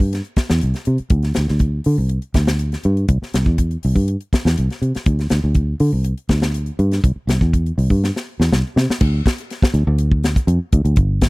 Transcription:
0.00 G2, kick
0.13 snare, closed hi-hat
0.24 closed hi-hat
0.36 kick, snare, closed hi-hat
0.49 E2, snare, closed hi-hat
0.61 C2, closed hi-hat
0.74 snare, closed hi-hat
0.85 C3, closed hi-hat
0.98 muted fingered electric bass stroke, closed hi-hat
1.10 D2, kick, closed hi-hat
1.23 snare, closed hi-hat
1.34 D2, snare, closed hi-hat
1.48 D2, snare
1.59 kick, closed hi-hat
1.84 D3, open hi-hat
1.98 C2
2.09 closed hi-hat
2.22 closed hi-hat
2.34 D2, kick, snare, closed hi-hat
2.47 snare, closed hi-hat
2.59 closed hi-hat
2.72 snare, closed hi-hat
2.83 G2, closed hi-hat
2.97 closed hi-hat
3.08 C2, kick, closed hi-hat
3.22 muted fingered electric bass stroke, snare
3.34 C2, snare, closed hi-hat
3.46 E2, kick
3.58 kick, closed hi-hat
3.71 closed hi-hat
3.83 C2, open hi-hat
3.95 G2, kick
4.08 closed hi-hat
4.21 closed hi-hat
4.33 kick, snare, closed hi-hat
4.45 E2, snare, closed hi-hat
4.58 C2, closed hi-hat
4.70 snare, closed hi-hat
4.82 C3, closed hi-hat
4.95 muted fingered electric bass stroke, snare, closed hi-hat
5.06 D2, kick, closed hi-hat
5.19 snare, closed hi-hat
5.29 D2, snare, closed hi-hat
5.44 D2
5.55 kick, closed hi-hat
5.80 D3, open hi-hat
5.93 C2
6.04 closed hi-hat
6.18 closed hi-hat
6.29 D2, kick, snare, closed hi-hat
6.41 snare, closed hi-hat
6.54 closed hi-hat
6.66 closed hi-hat
6.79 G2, closed hi-hat
6.91 snare, closed hi-hat
7.04 C2, kick, closed hi-hat
7.16 muted fingered electric bass stroke
7.27 C2, snare, closed hi-hat
7.41 E2, kick
7.53 kick, closed hi-hat
7.66 closed hi-hat
7.78 C2, open hi-hat
7.90 G2, kick
8.04 snare
8.16 snare
8.40 E2, snare
8.52 C2, snare
8.76 C3, snare
8.90 muted fingered electric bass stroke, snare
9.01 D2, kick, crash
9.26 kick, snare, closed hi-hat
9.38 closed hi-hat
9.50 snare, closed hi-hat
9.62 kick, snare
9.74 D2, closed hi-hat
9.87 D2
9.98 closed hi-hat
10.11 kick
10.24 snare, closed hi-hat
10.36 kick, closed hi-hat
10.47 F2, closed hi-hat
10.72 D2, kick, closed hi-hat
10.85 D2, closed hi-hat
10.96 G1, kick, closed hi-hat
11.21 kick, snare, closed hi-hat

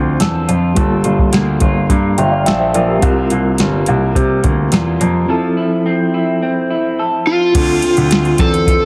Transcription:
Already playing: D2 D3 F3 C4 D4 F4 A4
0.20 E2 A4, snare, closed hi-hat
0.48 F2 F4, closed hi-hat
0.74 G1 G3 A#3 F4 A4, kick, closed hi-hat
0.79 A4
1.04 G1 F4, closed hi-hat
1.19 kick
1.32 D2 A#3, snare, closed hi-hat
1.60 G1 F4, kick, closed hi-hat
1.89 G2 A#3, kick, closed hi-hat
2.18 G1 F4 E5 G5, closed hi-hat
2.31 D5 F5
2.46 A#1 A4 E5 G5, snare, closed hi-hat
2.60 C5 E5
2.74 A#1 F4 A#4 D5, closed hi-hat
2.88 G4 A#4
2.99 C2 C3 G3 C4 F4, kick, closed hi-hat
3.04 F4 A#4
3.30 C2 A#3, closed hi-hat
3.58 G1 G3, snare, closed hi-hat
3.86 C2 A#3, closed hi-hat
4.15 C3 G3, kick, closed hi-hat
4.43 D2 A#3, kick, closed hi-hat
4.72 E2 F4, snare, closed hi-hat
5.00 F2 A#3, closed hi-hat
5.26 F3 C4 E4 A4
5.31 A4
5.57 E4
5.86 C4
6.14 E4
6.42 C4
6.70 E4
6.99 A4
7.27 F4
7.52 D2 D3 C4 D4 F4, kick, closed hi-hat, crash
7.57 A4
7.82 C4, closed hi-hat
7.97 D2, closed hi-hat
8.11 F4, snare, closed hi-hat
8.25 closed hi-hat
8.38 E2 C4 A4, kick, closed hi-hat
8.54 closed hi-hat
8.67 F4, kick, closed hi-hat

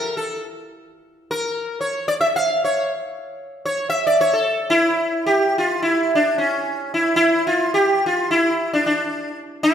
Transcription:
Already playing: A#4
0.17 A4
1.31 A#4
1.81 C#5
2.08 D5
2.21 E5
2.36 F5
2.64 C#5
3.65 C#5
3.90 E5
4.07 D5
4.21 C#5
4.33 A4
4.70 E4
5.26 G4
5.58 F4
5.82 E4
6.15 D4
6.38 C#4
6.94 E4
7.16 E4
7.47 F4
7.74 G4
8.06 F4
8.31 E4
8.73 D4
8.86 D4
9.63 E4

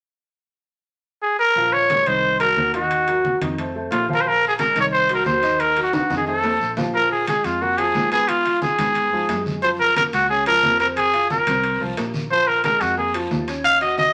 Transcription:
1.23 G#4
1.39 A#4
1.56 A#1 F3 F4 F5, high conga
1.73 C#5, high conga
1.90 G#3 G#4 A#4, high conga, high timbale, low timbale
2.06 C2 D#3 D#4 C5 D#5, high conga, high timbale
2.24 high conga
2.40 F#3 F#4 A#4, high conga, high timbale
2.57 D#2 F#3 F#4 A#4, high conga, low timbale
2.74 D#3 D#4 F#4 D#5, high timbale
2.91 high conga, high timbale
3.07 F#3 F#4 A#4, high conga, high timbale
3.25 high conga, low timbale
3.41 F2 D#3 D#4 D#5, high conga, high timbale
3.58 A3 A4 C5, high conga, high timbale
3.75 A3 A4 C5, high conga
3.91 A#1 F4, high conga, high timbale, low timbale
4.09 F3 F4 F5, high conga
4.15 A#4
4.21 C5
4.25 F3 F4 A#4 F5, high conga, long guiro
4.42 high conga
4.48 G#4
4.59 G#3 G#4 A#4, high conga, high timbale, low timbale, short guiro
4.76 C2 D#3 D#4 D#5, high conga, high timbale, short guiro
4.81 C#5
4.92 C5, high conga, long guiro
5.09 F#3 F#4 A#4, high conga, high timbale
5.14 A#4
5.26 D#2 F#3 A#4 C5, high conga, low timbale, short guiro
5.43 D#3 D#4 D#5, high timbale, short guiro
5.60 A#4, high conga, high timbale, long guiro
5.76 F#3 F#4 A#4, high conga, high timbale
5.83 F#4
5.93 F#4, high conga, high timbale, short guiro
6.10 F2 D#3 D#4 D#5, high conga, high timbale, short guiro
6.17 G#4
6.27 A3 A4 C5, high conga, long guiro
6.44 A3 A4 C5, high conga, low timbale
6.60 A#1, high conga, short guiro
6.77 F3 F4 F5, high conga, low timbale, short guiro
6.94 F3 F4 A#4, high conga, long guiro
7.11 G#4, high conga
7.27 G#3 G#4, high conga, high timbale, low timbale, short guiro
7.44 F2 F4, high conga, high timbale, short guiro
7.61 A#3 F#4 A#4, high conga, long guiro
7.78 F3 F4 G#4, high conga, high timbale
7.95 G#2, high conga, low timbale, short guiro
8.12 B3 G#4 B4, high conga, high timbale, short guiro
8.28 F4, high conga, high timbale, long guiro
8.45 F4 F5, high conga, high timbale
8.62 G#4, high conga, low timbale, short guiro
8.79 G#2 B3 B4, high conga, high timbale, short guiro
8.95 high conga, high timbale, long guiro
9.12 G#2 F3 F4, high conga
9.29 F#2 G#3 G#4, high conga, high timbale, low timbale, short guiro
9.46 high conga, short guiro
9.63 F3 F4 C5, high conga, long guiro
9.80 A#4, high conga
9.96 A#3 A#4, high conga, high timbale, low timbale, short guiro
10.13 C#2 F#4, high conga, high timbale, short guiro
10.29 C#4 G#4 C#5, high conga, long guiro
10.46 F3 F4 A#4, high conga, high timbale
10.63 F2, high conga, low timbale, short guiro
10.80 C4 A#4 C5, high timbale, short guiro
10.96 G#4, high conga, high timbale, long guiro
11.13 F4 F5, high conga, high timbale
11.30 A#4, high conga, low timbale, short guiro
11.47 C2 C4 C5, high conga, high timbale, short guiro
11.63 high conga, high timbale, long guiro
11.81 C2 F3 F4, high conga
11.97 A#1 A#3 A#4, high conga, high timbale, low timbale, short guiro
12.14 high conga, short guiro
12.31 F3 F4 C5, high conga, long guiro
12.48 A#4, high conga
12.64 G#3 G#4 A#4, high conga, high timbale, low timbale, short guiro
12.81 F2 F#4, high conga, high timbale, short guiro
12.97 A#3 G#4 A#4, high conga, long guiro
13.14 F3 F4, high conga, high timbale
13.31 D#2, high conga, low timbale, short guiro
13.48 C#4 C#5, high conga, high timbale, short guiro
13.64 F5, high conga, high timbale, long guiro
13.81 F#4 D#5 F#5, high conga, high timbale
13.98 D#5, high conga, low timbale, short guiro

